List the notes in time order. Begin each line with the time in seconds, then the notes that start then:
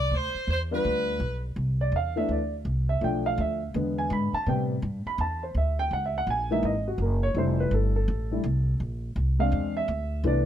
Already playing: C2 D5
0.11 D2
0.15 C5
0.34 muted upright bass stroke
0.47 E2 C5
0.71 G3 B3 D4 F4 B4
0.84 D2
1.20 B1
1.56 C2
1.81 D5
1.92 E2
1.96 F5
2.16 E3 A3 B3 D4 E5
2.29 D2 D5
2.65 C2
2.89 E5
3.01 B1 F3 A3 D4 G5
3.26 F5
3.38 D2 E5
3.74 E2 D3 G#3 B3
3.98 G#5
4.10 G#2 B5
4.33 A5, muted upright bass stroke
4.46 A2 C3 G3 B3 G5
4.82 G2
5.06 B5, muted upright bass stroke
5.18 E2 A5
5.43 C5
5.54 D2 E5
5.79 G5
5.91 C#2 F#5
6.06 E5
6.18 F#5
6.27 A#1 G#5
6.51 E3 G#3 A#3 D#4 E5
6.63 G#1 D#5
6.88 F#4
6.98 F#1 A#4
7.23 C#5
7.34 F1 G3 A3 E4 C5
7.60 B4
7.71 G1 A4
7.96 A4
8.08 A1
8.31 G3 A3 E4
8.44 C2
8.80 A#1
9.16 C2
9.39 G#3 C4 D4 F5
9.52 E2
9.77 E5
9.88 D2
10.24 C2 E3 A3 B3 D4 D5